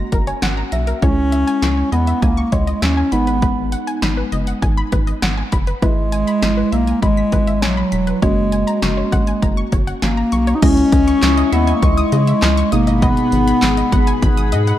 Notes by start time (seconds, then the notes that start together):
Already playing: A#3 C#4 F#4
0.12 F#1 A#4 A#5, kick, closed hi-hat
0.27 C#5 G#5, closed hi-hat
0.42 G#1 F#5, snare, closed hi-hat
0.57 A#5
0.72 B1 E5 A#6, closed hi-hat
0.87 A#4, closed hi-hat
1.02 C#2 G#3 C#4 E4 C#5, kick, closed hi-hat
1.32 E5, closed hi-hat
1.47 G#5, closed hi-hat
1.62 C#2 C#6, snare, closed hi-hat
1.77 C#5
1.92 E2 B3 D#5, closed hi-hat
2.07 E5, closed hi-hat
2.22 C#2 A#3 G#5, kick, closed hi-hat
2.37 C#6
2.52 C#2 G#3 C#5, kick, closed hi-hat
2.67 D#5, closed hi-hat
2.82 D#2 C#4 E5, snare, closed hi-hat
2.97 G#5
3.12 G#1 G#3 B3 D#4 B5, closed hi-hat
3.27 B4, closed hi-hat
3.42 B4, kick, closed hi-hat
3.72 F#5, closed hi-hat
3.87 G#5, closed hi-hat
4.02 G#1 B5, snare, closed hi-hat
4.17 B4
4.32 F#1 D#5, closed hi-hat
4.47 F#5, closed hi-hat
4.62 G#1 G#5, kick, closed hi-hat
4.77 B5
4.92 G#1 B4, kick, closed hi-hat
5.07 D#5, closed hi-hat
5.22 G#1 F#5, snare, closed hi-hat
5.37 G#5
5.52 F#1 B5, kick, closed hi-hat
5.67 B4, closed hi-hat
5.82 G#1 G#3 E4 B4, kick, closed hi-hat
6.12 G#5, closed hi-hat
6.27 B5, closed hi-hat
6.42 G#1 B6, snare, closed hi-hat
6.57 B4
6.72 B1 A#3 E5, closed hi-hat
6.87 G#5, closed hi-hat
7.02 G#1 G#3 B5, kick, closed hi-hat
7.17 B6
7.32 G#1 B4, kick, closed hi-hat
7.47 E5, closed hi-hat
7.62 A#1 F#3 G#5, snare, closed hi-hat
7.77 B5
7.92 E1 B6, closed hi-hat
8.07 B4, closed hi-hat
8.22 F#1 G#3 A#3 C#4 F#4 C#5, kick, closed hi-hat
8.52 G#5, closed hi-hat
8.67 A#5, closed hi-hat
8.82 F#1 G#3 C#6, snare, closed hi-hat
8.97 C#5
9.12 G#1 F#5, kick, closed hi-hat
9.27 G#5, closed hi-hat
9.42 F#1 A#5, kick, closed hi-hat
9.57 C#6
9.72 F#1 C#5, kick, closed hi-hat
9.87 F#5, closed hi-hat
10.02 G#1 A#3 G#5, snare, closed hi-hat
10.17 A#5
10.32 B1 C#6, closed hi-hat
10.47 C#5, closed hi-hat
10.56 D#4
10.62 C#2 G#3 C#4 E4 D#5 C#6, kick, closed hi-hat, crash
10.77 closed hi-hat
10.92 C#2, kick, closed hi-hat
11.07 C#6, closed hi-hat
11.22 C#2 D#6, snare, clap, closed hi-hat
11.37 D#5, closed hi-hat
11.52 D#2 B3 E5, closed hi-hat
11.67 G#5, closed hi-hat
11.75 A#3
11.82 C#2 G#3 C#6, kick, closed hi-hat
11.97 D#6, closed hi-hat
12.12 C#3 D#5, closed hi-hat
12.27 E5, closed hi-hat
12.42 C#2 G#5, snare, clap, closed hi-hat
12.57 C#6, closed hi-hat
12.72 G#1 B2 G#3 A#3 D#4 G#4 F#5 B5 D#6, closed hi-hat
12.87 D#5, closed hi-hat
13.02 B3 D#5, kick, closed hi-hat
13.17 closed hi-hat
13.32 G#1, closed hi-hat
13.47 B5, closed hi-hat
13.62 G#1 D#6, snare, clap, closed hi-hat
13.77 D#5, closed hi-hat
13.92 G#1 F#5, kick, closed hi-hat
14.07 G#5, closed hi-hat
14.22 G#1 B5, kick, closed hi-hat
14.37 D#6, closed hi-hat
14.52 G#2 D#5, closed hi-hat
14.67 F#5, closed hi-hat